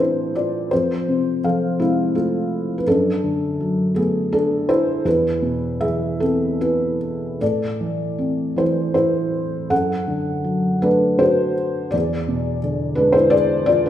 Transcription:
Already playing: A2 E3 A3 C4 D4 B4 C5
0.00 E4
0.35 F4 D5
0.71 F2 F4 C5
1.08 C3
1.44 F3 A4 F5
1.80 C3 G#3 E4
2.15 A3 F4
2.78 B4
2.87 F#2 D4 A4
3.24 D3
3.60 F#3
3.95 A3 B3 G#4
4.33 D4 A4
4.69 E4 C5
5.05 E2 E4 B4
5.42 B2
5.81 E3 G#4 E5
6.20 C4 A4
6.61 E4 B4
7.40 A2 A4 D5
7.81 E3
8.19 C4
8.56 E3 E4 C5
8.94 E4 C5
9.70 F#2 A4 F#5
10.08 D3
10.44 F#3
10.82 A3 D4 B4
11.19 F#4 C5
11.91 E2 G#4 D5
12.28 B2
12.63 D3
12.95 G#3 D4 B4
13.13 E4 C5
13.30 G#4 D5
13.66 F4 D5
13.86 B4

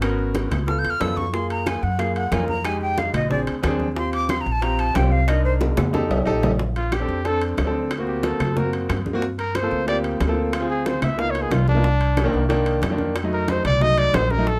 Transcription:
Already playing: G#1
0.01 B3 C#4 F#4 A#4, high bongo, high conga, high timbale, claves
0.19 high conga
0.35 high bongo, high conga, high timbale
0.51 C#2, high bongo, high conga, low conga, high timbale, claves
0.67 B3 F4 A4 F6, high bongo, high conga
0.79 G6
0.84 E2, high bongo, high conga, high timbale
0.90 F6
1.00 F#2 B3 F4 A4 E6, high bongo, low bongo, high conga, high timbale, low timbale, claves
1.17 C#6, high bongo, high conga
1.33 A#3 F4 G#4 C6, high bongo, high conga
1.50 A#5, high conga, high timbale
1.66 G#5, high bongo, high conga, high timbale, claves
1.83 F#2 F#5, high conga
1.99 A#3 F4 G#4 F5, high bongo, high conga, high timbale
2.15 F#5, high conga, high timbale
2.32 F2 A#3 F4 A#4 G#5, high bongo, low bongo, high conga, high timbale, low timbale, claves
2.48 A#5, high conga
2.64 G#3 D#4 G4 G#5, high bongo, high conga, high timbale, claves
2.81 G5, high conga
2.98 F5, high bongo, high conga, high timbale
3.14 A#1 D#5, high bongo, high conga, low conga, high timbale, claves
3.30 C4 D4 G#4 D5, high bongo, high conga, low conga
3.47 D2, high bongo, high conga, high timbale
3.63 D#2 C4 D4 G#4, high bongo, low bongo, high conga, high timbale, low timbale, claves
3.80 high bongo, high conga
3.95 C4 F4 G4 C6, high bongo, high conga
4.13 D6, high conga, high timbale
4.29 C6, high bongo, high conga, high timbale, claves
4.41 A#5
4.46 A#1, high conga
4.52 A5
4.61 C4 F4 G4 A#5, high bongo, high conga, high timbale
4.79 A5, high conga, high timbale
4.94 C2 C4 F4 G4 G5, high bongo, low bongo, high conga, high timbale, low timbale, claves
5.12 F5
5.28 D4 D#4 A#4 D#5, high bongo, high conga, high timbale, claves
5.45 C5, high conga
5.61 high bongo, high conga, high timbale
5.77 F2, high bongo, high conga, low conga, high timbale, claves
5.93 D#4 G4 A4, high bongo, high conga, high timbale
6.10 C2, low timbale
6.25 A#1 D#4 G4 A4, claves
6.43 low bongo, low conga, low timbale
6.59 high bongo, high conga
6.76 F4, high conga, high timbale
6.92 G4, high bongo, high conga, high timbale, claves
7.00 C4 D4 A4
7.08 F2, high conga
7.24 C4 D4 A4, high bongo, high conga, high timbale
7.41 high conga, high timbale
7.57 D2, high bongo, low bongo, high conga, high timbale, low timbale, claves
7.66 C4 D4 A4
7.91 high bongo, high conga, high timbale, claves
7.98 A#3 C4 F#4
8.07 G4, high conga
8.23 A4, high bongo, high conga, high timbale
8.40 F#2, high bongo, high conga, low conga, high timbale, claves
8.56 A#3 C4 F#4 A#4, high bongo, high conga, low conga
8.73 high bongo, high conga, high timbale
8.89 G2, high bongo, low bongo, high conga, high timbale, claves
9.06 high bongo, high conga
9.13 A#3 C4 F#4
9.22 high bongo, high conga
9.39 A#4, high conga, high timbale
9.55 C5, high bongo, high conga, high timbale, claves
9.62 A#3 C4 F4 A4
9.71 D2, high conga
9.87 A#3 C4 F4 G4 D5, high bongo, high conga, high timbale
10.04 high conga, high timbale
10.20 D2, high bongo, low bongo, high conga, high timbale, claves
10.27 A#3 C4 F4 A4
10.53 F4, high bongo, high conga, high timbale, claves
10.60 C4 F4 G#4
10.70 G#4, high conga
10.86 C5, high bongo, high conga, high timbale
11.02 C#2 E5, high bongo, high conga, low conga, high timbale, claves
11.18 A#3 B3 D#4 F4 F5, high bongo, high conga
11.30 C#5
11.35 high bongo, high conga, high timbale
11.42 G#4
11.51 C2 F4, high bongo, low bongo, high conga, high timbale, low timbale, claves
11.68 D4, high bongo, high conga
11.75 A#3 B3 D#4 F4
11.84 high bongo, high conga
12.01 high conga, high timbale
12.17 high bongo, high conga, high timbale, claves
12.24 D#3 A#3 D4
12.33 C2, high conga
12.49 D#3 A#3 D4, high bongo, high conga, high timbale
12.66 high conga, high timbale
12.82 F2, high bongo, low bongo, high conga, high timbale, low timbale, claves
12.90 D#3 A#3 D4
12.98 high conga
13.15 high bongo, high conga, high timbale, claves
13.23 F#3 A3 D#4
13.32 A#4, high conga
13.48 C5, high bongo, high conga, high timbale
13.65 C2 D5, high bongo, high conga, low conga, high timbale, claves
13.80 F#3 A3 D#4 D#5, high bongo, high conga
13.97 D5, high bongo, high conga, high timbale
14.13 A#1 C5, high bongo, low bongo, high conga, high timbale, low timbale, claves
14.30 A#4, high bongo, high conga
14.37 F#3 A3 D#4
14.47 A4, high bongo, high conga

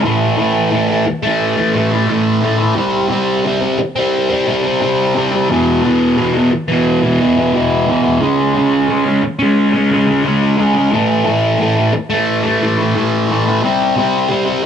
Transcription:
0.03 A2 E3 A3
0.37 A2 E3 A3
0.72 A2 E3 A3
0.89 E3 A3
1.06 muted distorted electric guitar stroke
1.23 E3 A3
1.57 E3 A3
1.74 A2 E3 A3
1.91 E3 A3
2.07 A2 E3 A3
2.42 A2 E3 A3
2.59 E3 A3
2.76 C3 G3 C4
3.10 C3 G3 C4
3.45 C3 G3 C4
3.61 G3 C4
3.79 muted distorted electric guitar stroke
3.96 G3 C4
4.30 G3 C4
4.47 C3 G3 C4
4.64 G3 C4
4.80 C3 G3 C4
5.15 C3 G3 C4
5.32 G3 C4
5.49 E2 B2 E3
5.83 E2 B2 E3
6.17 E2 B2 E3
6.35 B2 E3
6.52 muted distorted electric guitar stroke
6.68 B2 E3
7.02 B2 E3
7.19 E2 B2 E3
7.36 B2 E3
7.53 E2 B2 E3
7.87 E2 B2 E3
8.03 B2 E3
8.20 C#3 G#3 C#4
8.54 C#3 G#3 C#4
8.88 C#3 G#3 C#4
9.05 G#3 C#4
9.23 muted distorted electric guitar stroke
9.39 G#3 C#4
9.73 G#3 C#4
9.90 C#3 G#3 C#4
10.07 G#3 C#4
10.24 C#3 G#3 C#4
10.57 C#3 G#3 C#4
10.74 G#3 C#4
10.91 A2 E3 A3
11.25 A2 E3 A3
11.59 A2 E3 A3
11.76 E3 A3
11.93 muted distorted electric guitar stroke
12.10 E3 A3
12.44 E3 A3
12.61 A2 E3 A3
12.78 E3 A3
12.95 A2 E3 A3
13.28 A2 E3 A3
13.45 E3 A3
13.62 C3 G3 C4
13.96 C3 G3 C4
14.30 C3 G3 C4
14.46 G3 C4

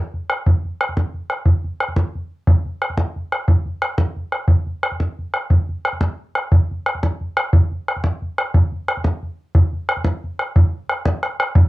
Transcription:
0.14 bodhran
0.30 bodhran
0.46 bodhran
0.65 bodhran
0.81 bodhran
0.89 bodhran
0.97 bodhran
1.14 bodhran
1.30 bodhran
1.46 bodhran
1.64 bodhran
1.80 bodhran
1.88 bodhran
1.96 bodhran
2.15 bodhran
2.47 bodhran
2.65 bodhran
2.82 bodhran
2.90 bodhran
2.97 bodhran
3.16 bodhran
3.32 bodhran
3.48 bodhran
3.66 bodhran
3.82 bodhran
3.98 bodhran
4.16 bodhran
4.32 bodhran
4.48 bodhran
4.66 bodhran
4.83 bodhran
4.92 bodhran
5.00 bodhran
5.19 bodhran
5.34 bodhran
5.50 bodhran
5.69 bodhran
5.85 bodhran
5.93 bodhran
6.01 bodhran
6.35 bodhran
6.52 bodhran
6.71 bodhran
6.86 bodhran
6.95 bodhran
7.03 bodhran
7.21 bodhran
7.37 bodhran
7.53 bodhran
7.72 bodhran
7.88 bodhran
7.96 bodhran
8.04 bodhran
8.22 bodhran
8.38 bodhran
8.54 bodhran
8.72 bodhran
8.88 bodhran
8.97 bodhran
9.04 bodhran
9.23 bodhran
9.55 bodhran
9.73 bodhran
9.89 bodhran
9.97 bodhran
10.04 bodhran
10.24 bodhran
10.39 bodhran
10.56 bodhran
10.89 bodhran
11.05 bodhran
11.23 bodhran
11.40 bodhran
11.55 bodhran

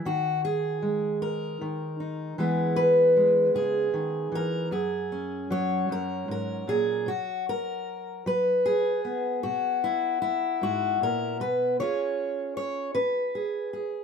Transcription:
0.05 D#3 F#4
0.45 G#4
0.82 G#3
1.22 A#4
1.61 D#3
2.00 D#4
2.38 E3 G#3 B3 G#4
2.76 B4
3.17 G#3
3.55 C#3 G#4
3.94 D#3
4.32 E3 A#4
4.71 F#2 G#4
5.12 C#4
5.51 F#3 C#5
5.89 F#2 A#4
6.28 G#2 A#4
6.68 A#2 G#4
7.06 B2 F#4
7.49 A#4
8.26 F#3 B4
8.66 G#4
9.05 B3
9.43 B2 F#4
9.84 E4
10.22 E4
10.62 G#2 F#4
11.01 A#2 A#4
11.40 B2 B4
11.80 C#3 C#4 F4 G#4 C#5
12.57 C#5
12.95 C#4 B4
13.35 G#4
13.73 G#4

